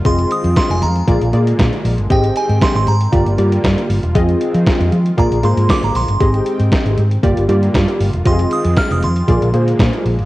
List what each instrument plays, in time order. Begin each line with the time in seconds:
Already playing: analog synth pad F4
0.05 fingered electric bass F1, analog synth pad D#3 G#3 C4, analog polysynth C4 F4 G#4 D#5, synth bell C6, kick, closed hi-hat
0.19 closed hi-hat
0.31 synth bell D#6, closed hi-hat
0.44 fingered electric bass F2, closed hi-hat
0.56 synth bell C6, kick, snare, closed hi-hat
0.70 fingered electric bass F1, synth bell G#5, closed hi-hat
0.82 fingered electric bass F2, synth bell A#5, closed hi-hat
0.96 closed hi-hat
1.07 fingered electric bass A#1, analog synth pad D3 A#3, analog polysynth A#3 F4 G#4 D5, kick, closed hi-hat
1.21 fingered electric bass A#1, closed hi-hat
1.33 fingered electric bass A#2, analog polysynth A#3 F4 G#4 D5, closed hi-hat
1.47 closed hi-hat
1.59 fingered electric bass A#2, kick, snare, closed hi-hat
1.73 closed hi-hat
1.85 fingered electric bass A#1, open hi-hat
1.98 fingered electric bass G1, closed hi-hat
2.10 fingered electric bass G#1, analog synth pad D#3 C4 G5, analog polysynth C4 G4 G#4 D#5, synth bell G5, kick, closed hi-hat
2.24 closed hi-hat
2.36 synth bell G#5, closed hi-hat
2.49 fingered electric bass G#2, closed hi-hat
2.61 synth bell C6, kick, snare, closed hi-hat
2.75 fingered electric bass G#1, synth bell C6, closed hi-hat
2.87 fingered electric bass G#2, synth bell A#5, closed hi-hat
3.01 closed hi-hat
3.12 fingered electric bass G1, analog synth pad D3 G3 A#3 F4, analog polysynth A#3 F4 G4 D5, kick, closed hi-hat
3.26 fingered electric bass G1, closed hi-hat
3.38 fingered electric bass G2, analog polysynth A#3 F4 G4 D5, closed hi-hat
3.52 closed hi-hat
3.64 fingered electric bass G2, kick, snare, closed hi-hat
3.78 closed hi-hat
3.89 fingered electric bass G1, open hi-hat
4.03 fingered electric bass E1, closed hi-hat
4.15 fingered electric bass F2, analog synth pad D#3 G#3 C4, analog polysynth C4 F4 G#4 D#5, kick, closed hi-hat
4.29 closed hi-hat
4.41 closed hi-hat
4.54 fingered electric bass F3, closed hi-hat
4.66 kick, snare, closed hi-hat
4.80 fingered electric bass F2, closed hi-hat
4.92 fingered electric bass F3, closed hi-hat
5.06 closed hi-hat
5.17 fingered electric bass A#1, analog synth pad D3 G#3 A#3, analog polysynth A#3 F4 G#4 D5, synth bell A#5, kick, closed hi-hat
5.31 fingered electric bass A#1, closed hi-hat
5.43 fingered electric bass G#2, analog polysynth A#3 F4 G#4 C5, synth bell C6, closed hi-hat
5.57 fingered electric bass G#2, closed hi-hat
5.69 synth bell D6, kick, snare, closed hi-hat
5.83 fingered electric bass G#1, synth bell A#5, closed hi-hat
5.95 fingered electric bass A#1, synth bell C6, open hi-hat
6.08 fingered electric bass G1, closed hi-hat
6.20 fingered electric bass G#1, analog synth pad D#3 C4 G5, analog polysynth C4 G4 G#4 D#5, kick, closed hi-hat
6.34 closed hi-hat
6.46 closed hi-hat
6.60 fingered electric bass G#2, closed hi-hat
6.72 kick, snare, closed hi-hat
6.85 fingered electric bass G#1, closed hi-hat
6.97 fingered electric bass G#2, closed hi-hat
7.11 closed hi-hat
7.23 fingered electric bass G1, analog synth pad D3 G3 A#3 F4, analog polysynth A#3 F4 G4 D5, kick, closed hi-hat
7.37 fingered electric bass G1, closed hi-hat
7.48 fingered electric bass G2, analog polysynth A#3 F4 G4 D5, closed hi-hat
7.63 closed hi-hat
7.74 fingered electric bass G2, kick, snare, closed hi-hat
7.88 closed hi-hat
8.00 fingered electric bass G1, open hi-hat
8.13 fingered electric bass E1, closed hi-hat
8.25 fingered electric bass F1, analog synth pad D#3 G#3 C4, analog polysynth C4 F4 G4 D#5, synth bell C6, kick, closed hi-hat
8.32 analog polysynth G#4
8.39 closed hi-hat
8.51 synth bell D#6, closed hi-hat
8.65 fingered electric bass F2, closed hi-hat
8.77 synth bell F6, kick, snare, closed hi-hat
8.91 fingered electric bass F1, synth bell D#6, closed hi-hat
9.03 fingered electric bass F2, synth bell C6, closed hi-hat
9.16 closed hi-hat
9.28 fingered electric bass A#1, analog synth pad D3 G#3 A#3, analog polysynth A#3 F4 G#4 D5, kick, closed hi-hat
9.42 fingered electric bass A#1, closed hi-hat
9.54 fingered electric bass A#2, analog polysynth A#3 F4 G#4 C5, closed hi-hat
9.68 closed hi-hat
9.79 fingered electric bass A#2, kick, snare, closed hi-hat
9.93 closed hi-hat
10.05 fingered electric bass A#1, open hi-hat
10.19 fingered electric bass G1, closed hi-hat